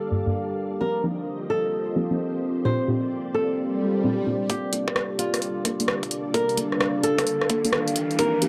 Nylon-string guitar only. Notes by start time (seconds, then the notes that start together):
Already playing: A4
0.81 A#4
1.50 A4
2.65 C5
3.34 A4
4.50 G4
5.19 F4
6.34 A#4
7.04 A4
8.19 A#4